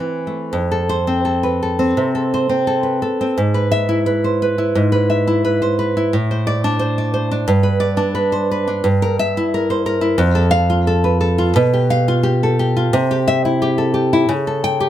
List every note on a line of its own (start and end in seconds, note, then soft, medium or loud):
0.00 0.53 E3 soft
0.00 0.53 C4 soft
0.27 0.53 A3 soft
0.53 1.93 F2 medium
0.71 1.24 A4 medium
0.89 1.19 C5 medium
1.07 1.78 C4 medium
1.25 1.61 A4 soft
1.43 2.33 B4 soft
1.63 2.14 A4 medium
1.79 2.48 C4 medium
1.97 3.02 C3 medium
2.15 2.66 A4 medium
2.34 2.83 C5 medium
2.49 3.20 C4 medium
2.67 3.01 A4 medium
2.83 3.36 B4 soft
3.02 3.37 A4 medium
3.21 3.37 C4 medium
3.38 4.72 G#2 medium
3.54 4.05 B4 medium
3.72 4.00 E5 medium
3.89 4.57 E4 medium
4.06 4.41 B4 medium
4.24 5.09 C5 soft
4.42 4.91 B4 medium
4.58 5.26 E4 medium
4.75 6.11 G#2 medium
4.92 5.43 B4 medium
5.10 5.61 E5 medium
5.27 5.96 E4 medium
5.45 5.78 B4 medium
5.62 6.14 C5 soft
5.79 6.14 B4 medium
5.97 6.14 E4 medium
6.13 7.44 A2 medium
6.31 6.78 C5 medium
6.47 6.74 D5 medium
6.64 7.30 D4 medium
6.79 7.12 C5 medium
6.98 7.49 D5 medium
7.14 7.48 C5 medium
7.31 7.49 D4 medium
7.48 8.81 G2 medium
7.63 8.13 B4 medium
7.80 8.09 D5 medium
7.97 8.66 D4 medium
8.15 8.50 B4 medium
8.32 8.84 C5 medium
8.51 8.85 B4 medium
8.68 8.85 D4 medium
8.84 10.14 G2 medium
9.02 9.19 A#4 medium
9.19 9.46 E5 medium
9.37 10.00 E4 medium
9.54 9.85 A#4 medium
9.70 10.19 C5 medium
9.86 10.19 A#4 medium
10.01 10.19 E4 medium
10.18 11.53 F2 medium
10.35 10.86 A4 medium
10.51 10.80 F5 loud
10.70 11.37 F4 medium
10.87 11.19 A4 medium
11.04 11.57 B4 medium
11.21 11.56 A4 medium
11.38 11.56 F4 medium
11.56 12.89 B2 medium
11.74 12.22 G4 medium
11.90 12.18 F5 medium
12.08 12.75 F4 medium
12.23 12.58 G4 medium
12.43 12.94 A4 medium
12.59 12.94 G4 medium
12.77 12.94 F4 medium
12.93 14.27 C3 loud
13.11 13.61 G4 medium
13.28 13.45 E5 medium
13.45 14.12 E4 medium
13.62 13.93 G4 medium
13.78 14.30 A4 medium
13.94 14.30 G4 medium
14.13 14.31 E4 medium
14.29 14.89 C#3 medium
14.47 14.89 A4 medium
14.64 14.89 G5 medium
14.80 14.89 G4 medium